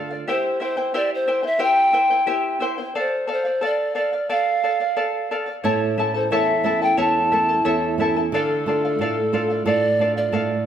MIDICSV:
0, 0, Header, 1, 4, 480
1, 0, Start_track
1, 0, Key_signature, -1, "minor"
1, 0, Tempo, 671141
1, 192, Time_signature, 2, 2, 24, 8
1, 7624, End_track
2, 0, Start_track
2, 0, Title_t, "Charango"
2, 0, Program_c, 0, 24
2, 0, Note_on_c, 0, 69, 54
2, 0, Note_on_c, 0, 74, 55
2, 72, Note_off_c, 0, 69, 0
2, 75, Note_off_c, 0, 74, 0
2, 76, Note_on_c, 0, 77, 45
2, 89, Note_on_c, 0, 74, 37
2, 194, Note_off_c, 0, 77, 0
2, 197, Note_on_c, 0, 76, 67
2, 198, Note_off_c, 0, 74, 0
2, 200, Note_on_c, 0, 64, 74
2, 200, Note_on_c, 0, 67, 69
2, 206, Note_on_c, 0, 72, 73
2, 208, Note_on_c, 0, 79, 77
2, 421, Note_off_c, 0, 76, 0
2, 428, Note_off_c, 0, 64, 0
2, 430, Note_on_c, 0, 76, 56
2, 431, Note_off_c, 0, 72, 0
2, 436, Note_off_c, 0, 67, 0
2, 436, Note_off_c, 0, 79, 0
2, 436, Note_on_c, 0, 64, 62
2, 439, Note_on_c, 0, 72, 61
2, 444, Note_on_c, 0, 79, 61
2, 541, Note_off_c, 0, 79, 0
2, 547, Note_off_c, 0, 64, 0
2, 547, Note_off_c, 0, 72, 0
2, 550, Note_on_c, 0, 79, 57
2, 551, Note_off_c, 0, 76, 0
2, 555, Note_on_c, 0, 64, 38
2, 556, Note_on_c, 0, 72, 48
2, 665, Note_off_c, 0, 64, 0
2, 669, Note_off_c, 0, 72, 0
2, 671, Note_off_c, 0, 79, 0
2, 673, Note_on_c, 0, 67, 78
2, 674, Note_on_c, 0, 64, 73
2, 676, Note_on_c, 0, 76, 70
2, 678, Note_on_c, 0, 72, 77
2, 681, Note_on_c, 0, 79, 71
2, 904, Note_off_c, 0, 76, 0
2, 905, Note_off_c, 0, 64, 0
2, 906, Note_off_c, 0, 72, 0
2, 909, Note_off_c, 0, 79, 0
2, 912, Note_on_c, 0, 76, 55
2, 913, Note_off_c, 0, 67, 0
2, 913, Note_on_c, 0, 64, 53
2, 915, Note_on_c, 0, 72, 66
2, 918, Note_on_c, 0, 79, 68
2, 1014, Note_off_c, 0, 79, 0
2, 1019, Note_off_c, 0, 72, 0
2, 1023, Note_off_c, 0, 64, 0
2, 1023, Note_on_c, 0, 79, 40
2, 1028, Note_on_c, 0, 72, 41
2, 1032, Note_off_c, 0, 76, 0
2, 1032, Note_on_c, 0, 64, 37
2, 1132, Note_off_c, 0, 79, 0
2, 1133, Note_off_c, 0, 64, 0
2, 1135, Note_off_c, 0, 72, 0
2, 1136, Note_on_c, 0, 67, 70
2, 1140, Note_on_c, 0, 76, 74
2, 1140, Note_on_c, 0, 79, 79
2, 1141, Note_on_c, 0, 64, 72
2, 1144, Note_on_c, 0, 72, 84
2, 1372, Note_off_c, 0, 64, 0
2, 1373, Note_off_c, 0, 76, 0
2, 1380, Note_off_c, 0, 72, 0
2, 1380, Note_off_c, 0, 79, 0
2, 1380, Note_on_c, 0, 64, 60
2, 1381, Note_on_c, 0, 76, 58
2, 1384, Note_off_c, 0, 67, 0
2, 1388, Note_on_c, 0, 72, 60
2, 1388, Note_on_c, 0, 79, 68
2, 1496, Note_off_c, 0, 79, 0
2, 1503, Note_off_c, 0, 64, 0
2, 1504, Note_off_c, 0, 72, 0
2, 1504, Note_on_c, 0, 79, 52
2, 1506, Note_off_c, 0, 76, 0
2, 1512, Note_on_c, 0, 64, 43
2, 1512, Note_on_c, 0, 72, 43
2, 1616, Note_off_c, 0, 64, 0
2, 1617, Note_off_c, 0, 72, 0
2, 1617, Note_off_c, 0, 79, 0
2, 1621, Note_on_c, 0, 67, 68
2, 1623, Note_on_c, 0, 76, 75
2, 1625, Note_on_c, 0, 64, 73
2, 1626, Note_on_c, 0, 72, 73
2, 1626, Note_on_c, 0, 79, 77
2, 1852, Note_off_c, 0, 76, 0
2, 1856, Note_off_c, 0, 64, 0
2, 1860, Note_on_c, 0, 76, 59
2, 1864, Note_off_c, 0, 72, 0
2, 1864, Note_on_c, 0, 64, 68
2, 1866, Note_off_c, 0, 67, 0
2, 1866, Note_off_c, 0, 79, 0
2, 1873, Note_on_c, 0, 72, 78
2, 1874, Note_on_c, 0, 79, 70
2, 1978, Note_off_c, 0, 79, 0
2, 1986, Note_off_c, 0, 76, 0
2, 1986, Note_on_c, 0, 79, 44
2, 1987, Note_off_c, 0, 72, 0
2, 1988, Note_off_c, 0, 64, 0
2, 1996, Note_on_c, 0, 72, 43
2, 2003, Note_on_c, 0, 64, 37
2, 2109, Note_off_c, 0, 64, 0
2, 2109, Note_off_c, 0, 79, 0
2, 2110, Note_off_c, 0, 72, 0
2, 2112, Note_on_c, 0, 69, 76
2, 2112, Note_on_c, 0, 74, 76
2, 2118, Note_on_c, 0, 77, 77
2, 2333, Note_off_c, 0, 69, 0
2, 2340, Note_off_c, 0, 74, 0
2, 2341, Note_on_c, 0, 69, 61
2, 2342, Note_off_c, 0, 77, 0
2, 2348, Note_on_c, 0, 74, 62
2, 2351, Note_on_c, 0, 77, 66
2, 2457, Note_off_c, 0, 77, 0
2, 2466, Note_off_c, 0, 69, 0
2, 2466, Note_on_c, 0, 77, 49
2, 2470, Note_off_c, 0, 74, 0
2, 2477, Note_on_c, 0, 74, 43
2, 2583, Note_on_c, 0, 69, 65
2, 2585, Note_off_c, 0, 74, 0
2, 2585, Note_off_c, 0, 77, 0
2, 2593, Note_on_c, 0, 77, 80
2, 2594, Note_on_c, 0, 74, 69
2, 2815, Note_off_c, 0, 69, 0
2, 2819, Note_off_c, 0, 74, 0
2, 2822, Note_off_c, 0, 77, 0
2, 2824, Note_on_c, 0, 69, 55
2, 2827, Note_on_c, 0, 74, 65
2, 2830, Note_on_c, 0, 77, 68
2, 2945, Note_off_c, 0, 77, 0
2, 2947, Note_off_c, 0, 69, 0
2, 2949, Note_off_c, 0, 74, 0
2, 2953, Note_on_c, 0, 77, 45
2, 2960, Note_on_c, 0, 74, 34
2, 3064, Note_off_c, 0, 74, 0
2, 3071, Note_on_c, 0, 69, 72
2, 3072, Note_off_c, 0, 77, 0
2, 3073, Note_on_c, 0, 74, 79
2, 3079, Note_on_c, 0, 77, 85
2, 3307, Note_off_c, 0, 69, 0
2, 3311, Note_off_c, 0, 74, 0
2, 3314, Note_off_c, 0, 77, 0
2, 3315, Note_on_c, 0, 69, 57
2, 3320, Note_on_c, 0, 74, 60
2, 3324, Note_on_c, 0, 77, 60
2, 3425, Note_off_c, 0, 77, 0
2, 3432, Note_off_c, 0, 69, 0
2, 3432, Note_off_c, 0, 74, 0
2, 3434, Note_on_c, 0, 77, 50
2, 3440, Note_on_c, 0, 74, 41
2, 3544, Note_off_c, 0, 74, 0
2, 3547, Note_off_c, 0, 77, 0
2, 3551, Note_on_c, 0, 69, 71
2, 3553, Note_on_c, 0, 74, 73
2, 3556, Note_on_c, 0, 77, 72
2, 3790, Note_off_c, 0, 69, 0
2, 3791, Note_off_c, 0, 74, 0
2, 3792, Note_off_c, 0, 77, 0
2, 3798, Note_on_c, 0, 69, 63
2, 3801, Note_on_c, 0, 74, 65
2, 3806, Note_on_c, 0, 77, 69
2, 3898, Note_off_c, 0, 77, 0
2, 3906, Note_on_c, 0, 77, 41
2, 3907, Note_off_c, 0, 74, 0
2, 3914, Note_off_c, 0, 69, 0
2, 3916, Note_on_c, 0, 74, 37
2, 4028, Note_off_c, 0, 77, 0
2, 4029, Note_off_c, 0, 74, 0
2, 4031, Note_on_c, 0, 73, 73
2, 4037, Note_on_c, 0, 64, 80
2, 4037, Note_on_c, 0, 76, 66
2, 4041, Note_on_c, 0, 69, 72
2, 4041, Note_on_c, 0, 81, 83
2, 4266, Note_off_c, 0, 76, 0
2, 4270, Note_off_c, 0, 73, 0
2, 4273, Note_off_c, 0, 64, 0
2, 4275, Note_off_c, 0, 69, 0
2, 4275, Note_off_c, 0, 81, 0
2, 4275, Note_on_c, 0, 76, 52
2, 4286, Note_on_c, 0, 64, 52
2, 4287, Note_on_c, 0, 81, 60
2, 4289, Note_on_c, 0, 69, 54
2, 4385, Note_off_c, 0, 81, 0
2, 4392, Note_off_c, 0, 76, 0
2, 4393, Note_off_c, 0, 69, 0
2, 4393, Note_on_c, 0, 81, 48
2, 4397, Note_off_c, 0, 64, 0
2, 4401, Note_on_c, 0, 69, 46
2, 4405, Note_on_c, 0, 64, 44
2, 4509, Note_off_c, 0, 64, 0
2, 4511, Note_off_c, 0, 81, 0
2, 4512, Note_off_c, 0, 69, 0
2, 4517, Note_on_c, 0, 64, 71
2, 4519, Note_on_c, 0, 73, 74
2, 4520, Note_on_c, 0, 76, 71
2, 4521, Note_on_c, 0, 69, 75
2, 4526, Note_on_c, 0, 81, 81
2, 4742, Note_off_c, 0, 76, 0
2, 4750, Note_off_c, 0, 69, 0
2, 4750, Note_on_c, 0, 76, 55
2, 4752, Note_off_c, 0, 81, 0
2, 4753, Note_off_c, 0, 64, 0
2, 4754, Note_off_c, 0, 73, 0
2, 4759, Note_on_c, 0, 69, 63
2, 4760, Note_on_c, 0, 64, 61
2, 4760, Note_on_c, 0, 81, 59
2, 4867, Note_off_c, 0, 81, 0
2, 4869, Note_off_c, 0, 76, 0
2, 4872, Note_off_c, 0, 69, 0
2, 4874, Note_off_c, 0, 64, 0
2, 4876, Note_on_c, 0, 81, 42
2, 4880, Note_on_c, 0, 69, 43
2, 4883, Note_on_c, 0, 64, 35
2, 4985, Note_off_c, 0, 64, 0
2, 4987, Note_off_c, 0, 69, 0
2, 4988, Note_off_c, 0, 81, 0
2, 4988, Note_on_c, 0, 73, 79
2, 4992, Note_on_c, 0, 76, 75
2, 4993, Note_on_c, 0, 64, 75
2, 4995, Note_on_c, 0, 69, 73
2, 4996, Note_on_c, 0, 81, 71
2, 5224, Note_off_c, 0, 76, 0
2, 5225, Note_off_c, 0, 64, 0
2, 5228, Note_off_c, 0, 73, 0
2, 5232, Note_off_c, 0, 69, 0
2, 5232, Note_off_c, 0, 81, 0
2, 5232, Note_on_c, 0, 76, 57
2, 5234, Note_on_c, 0, 64, 62
2, 5241, Note_on_c, 0, 69, 56
2, 5243, Note_on_c, 0, 81, 59
2, 5346, Note_off_c, 0, 81, 0
2, 5350, Note_off_c, 0, 69, 0
2, 5350, Note_off_c, 0, 76, 0
2, 5351, Note_off_c, 0, 64, 0
2, 5355, Note_on_c, 0, 81, 48
2, 5359, Note_on_c, 0, 69, 49
2, 5367, Note_on_c, 0, 64, 38
2, 5468, Note_off_c, 0, 64, 0
2, 5468, Note_off_c, 0, 69, 0
2, 5470, Note_off_c, 0, 81, 0
2, 5470, Note_on_c, 0, 73, 67
2, 5471, Note_on_c, 0, 76, 75
2, 5476, Note_on_c, 0, 64, 76
2, 5476, Note_on_c, 0, 69, 78
2, 5478, Note_on_c, 0, 81, 68
2, 5709, Note_off_c, 0, 73, 0
2, 5710, Note_off_c, 0, 76, 0
2, 5712, Note_off_c, 0, 64, 0
2, 5712, Note_off_c, 0, 69, 0
2, 5713, Note_off_c, 0, 81, 0
2, 5721, Note_on_c, 0, 76, 70
2, 5724, Note_on_c, 0, 64, 68
2, 5725, Note_on_c, 0, 69, 69
2, 5733, Note_on_c, 0, 81, 77
2, 5831, Note_off_c, 0, 81, 0
2, 5834, Note_off_c, 0, 69, 0
2, 5835, Note_off_c, 0, 76, 0
2, 5836, Note_off_c, 0, 64, 0
2, 5840, Note_on_c, 0, 81, 42
2, 5842, Note_on_c, 0, 69, 40
2, 5851, Note_on_c, 0, 64, 41
2, 5954, Note_off_c, 0, 81, 0
2, 5955, Note_off_c, 0, 69, 0
2, 5960, Note_off_c, 0, 64, 0
2, 5964, Note_on_c, 0, 69, 77
2, 5967, Note_on_c, 0, 74, 82
2, 5971, Note_on_c, 0, 77, 86
2, 6196, Note_off_c, 0, 69, 0
2, 6197, Note_off_c, 0, 74, 0
2, 6199, Note_off_c, 0, 77, 0
2, 6205, Note_on_c, 0, 69, 55
2, 6211, Note_on_c, 0, 74, 56
2, 6215, Note_on_c, 0, 77, 62
2, 6317, Note_off_c, 0, 69, 0
2, 6318, Note_off_c, 0, 77, 0
2, 6320, Note_off_c, 0, 74, 0
2, 6327, Note_on_c, 0, 77, 51
2, 6331, Note_on_c, 0, 74, 40
2, 6438, Note_off_c, 0, 77, 0
2, 6440, Note_off_c, 0, 74, 0
2, 6444, Note_on_c, 0, 69, 71
2, 6449, Note_on_c, 0, 74, 72
2, 6449, Note_on_c, 0, 77, 79
2, 6664, Note_off_c, 0, 69, 0
2, 6670, Note_off_c, 0, 74, 0
2, 6672, Note_off_c, 0, 77, 0
2, 6673, Note_on_c, 0, 69, 63
2, 6678, Note_on_c, 0, 74, 63
2, 6681, Note_on_c, 0, 77, 66
2, 6786, Note_off_c, 0, 77, 0
2, 6791, Note_off_c, 0, 69, 0
2, 6793, Note_off_c, 0, 74, 0
2, 6794, Note_on_c, 0, 77, 43
2, 6804, Note_on_c, 0, 74, 39
2, 6908, Note_off_c, 0, 77, 0
2, 6908, Note_on_c, 0, 69, 76
2, 6910, Note_off_c, 0, 74, 0
2, 6916, Note_on_c, 0, 77, 78
2, 6918, Note_on_c, 0, 74, 70
2, 7148, Note_off_c, 0, 69, 0
2, 7152, Note_off_c, 0, 77, 0
2, 7153, Note_off_c, 0, 74, 0
2, 7156, Note_on_c, 0, 69, 50
2, 7162, Note_on_c, 0, 74, 61
2, 7162, Note_on_c, 0, 77, 65
2, 7264, Note_off_c, 0, 77, 0
2, 7270, Note_off_c, 0, 74, 0
2, 7272, Note_off_c, 0, 69, 0
2, 7272, Note_on_c, 0, 77, 51
2, 7279, Note_on_c, 0, 74, 38
2, 7382, Note_off_c, 0, 74, 0
2, 7384, Note_off_c, 0, 77, 0
2, 7385, Note_on_c, 0, 69, 65
2, 7391, Note_on_c, 0, 74, 65
2, 7392, Note_on_c, 0, 77, 80
2, 7624, Note_off_c, 0, 69, 0
2, 7624, Note_off_c, 0, 74, 0
2, 7624, Note_off_c, 0, 77, 0
2, 7624, End_track
3, 0, Start_track
3, 0, Title_t, "Pan flute"
3, 0, Program_c, 1, 75
3, 210, Note_on_c, 1, 72, 81
3, 425, Note_off_c, 1, 72, 0
3, 450, Note_on_c, 1, 72, 84
3, 665, Note_off_c, 1, 72, 0
3, 685, Note_on_c, 1, 74, 82
3, 791, Note_off_c, 1, 74, 0
3, 820, Note_on_c, 1, 72, 86
3, 1048, Note_on_c, 1, 76, 99
3, 1059, Note_off_c, 1, 72, 0
3, 1160, Note_off_c, 1, 76, 0
3, 1164, Note_on_c, 1, 79, 105
3, 1849, Note_off_c, 1, 79, 0
3, 2141, Note_on_c, 1, 72, 80
3, 2350, Note_off_c, 1, 72, 0
3, 2377, Note_on_c, 1, 72, 82
3, 2588, Note_off_c, 1, 72, 0
3, 2611, Note_on_c, 1, 74, 80
3, 2824, Note_off_c, 1, 74, 0
3, 2837, Note_on_c, 1, 74, 86
3, 3078, Note_on_c, 1, 77, 100
3, 3089, Note_off_c, 1, 74, 0
3, 3793, Note_off_c, 1, 77, 0
3, 4034, Note_on_c, 1, 73, 84
3, 4404, Note_on_c, 1, 72, 76
3, 4415, Note_off_c, 1, 73, 0
3, 4516, Note_off_c, 1, 72, 0
3, 4522, Note_on_c, 1, 76, 85
3, 4885, Note_on_c, 1, 79, 99
3, 4895, Note_off_c, 1, 76, 0
3, 4996, Note_off_c, 1, 79, 0
3, 5007, Note_on_c, 1, 81, 99
3, 5689, Note_off_c, 1, 81, 0
3, 5969, Note_on_c, 1, 69, 95
3, 6890, Note_off_c, 1, 69, 0
3, 6912, Note_on_c, 1, 74, 106
3, 7245, Note_off_c, 1, 74, 0
3, 7276, Note_on_c, 1, 74, 83
3, 7608, Note_off_c, 1, 74, 0
3, 7624, End_track
4, 0, Start_track
4, 0, Title_t, "Nylon-string guitar"
4, 0, Program_c, 2, 24
4, 0, Note_on_c, 2, 50, 56
4, 0, Note_on_c, 2, 65, 43
4, 169, Note_off_c, 2, 50, 0
4, 193, Note_off_c, 2, 65, 0
4, 4034, Note_on_c, 2, 45, 68
4, 4273, Note_on_c, 2, 57, 42
4, 4274, Note_on_c, 2, 61, 38
4, 4277, Note_on_c, 2, 64, 47
4, 4497, Note_off_c, 2, 45, 0
4, 4510, Note_on_c, 2, 40, 61
4, 4655, Note_off_c, 2, 57, 0
4, 4656, Note_off_c, 2, 61, 0
4, 4657, Note_off_c, 2, 64, 0
4, 4746, Note_on_c, 2, 57, 51
4, 4750, Note_on_c, 2, 61, 42
4, 4753, Note_on_c, 2, 64, 51
4, 4975, Note_off_c, 2, 40, 0
4, 4991, Note_on_c, 2, 40, 63
4, 5131, Note_off_c, 2, 57, 0
4, 5133, Note_off_c, 2, 61, 0
4, 5134, Note_off_c, 2, 64, 0
4, 5236, Note_on_c, 2, 57, 39
4, 5238, Note_on_c, 2, 61, 40
4, 5242, Note_on_c, 2, 64, 48
4, 5455, Note_off_c, 2, 40, 0
4, 5470, Note_on_c, 2, 40, 66
4, 5617, Note_off_c, 2, 57, 0
4, 5618, Note_off_c, 2, 61, 0
4, 5619, Note_off_c, 2, 64, 0
4, 5707, Note_on_c, 2, 57, 47
4, 5707, Note_on_c, 2, 61, 40
4, 5715, Note_on_c, 2, 64, 50
4, 5899, Note_off_c, 2, 61, 0
4, 5900, Note_off_c, 2, 57, 0
4, 5904, Note_off_c, 2, 64, 0
4, 5935, Note_off_c, 2, 40, 0
4, 5952, Note_on_c, 2, 50, 69
4, 6195, Note_on_c, 2, 57, 43
4, 6195, Note_on_c, 2, 62, 41
4, 6199, Note_on_c, 2, 65, 48
4, 6416, Note_off_c, 2, 50, 0
4, 6427, Note_on_c, 2, 45, 59
4, 6576, Note_off_c, 2, 57, 0
4, 6576, Note_off_c, 2, 62, 0
4, 6579, Note_off_c, 2, 65, 0
4, 6669, Note_on_c, 2, 57, 43
4, 6673, Note_on_c, 2, 62, 39
4, 6676, Note_on_c, 2, 65, 56
4, 6893, Note_off_c, 2, 45, 0
4, 6905, Note_on_c, 2, 45, 66
4, 7053, Note_off_c, 2, 57, 0
4, 7055, Note_off_c, 2, 62, 0
4, 7057, Note_off_c, 2, 65, 0
4, 7143, Note_on_c, 2, 57, 39
4, 7148, Note_on_c, 2, 62, 41
4, 7150, Note_on_c, 2, 65, 48
4, 7373, Note_off_c, 2, 45, 0
4, 7383, Note_on_c, 2, 45, 70
4, 7530, Note_off_c, 2, 57, 0
4, 7531, Note_off_c, 2, 62, 0
4, 7533, Note_off_c, 2, 65, 0
4, 7624, Note_off_c, 2, 45, 0
4, 7624, End_track
0, 0, End_of_file